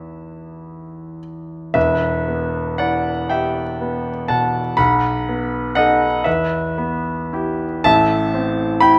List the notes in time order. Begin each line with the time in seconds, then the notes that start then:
Already playing: E2 B3 E4 G4 E5
1.74 E1 E2 B4 E5
2.28 B3
2.78 E4 D5 F#5
3.29 G4 E5 G5
3.81 B3
4.28 B2 F#5 A5
4.77 B1 F#5 B5
5.29 B3
5.75 D#4 A4 D#5 F#5
6.24 E2 B4 E5
6.78 B3
7.33 E4 G4
7.84 A1 A2 E5 A5
8.34 C4
8.80 E4 G5 B5